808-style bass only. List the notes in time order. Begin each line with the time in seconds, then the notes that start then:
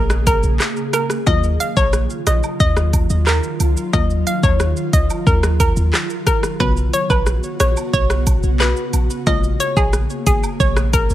Already playing: A#1
0.43 A#1
1.27 D#2
1.77 A#1
2.27 A#1
2.60 D#2
3.10 D#2
3.60 C#2
3.93 D#2
4.43 D#2
4.93 C#2
5.27 D#2
5.77 D#2
6.60 B1
7.10 A#1
7.60 A#1
7.93 B1
8.43 B1
8.93 A#1
9.27 A#1
9.77 A#1
10.27 G#1
10.60 A#1
11.10 A#1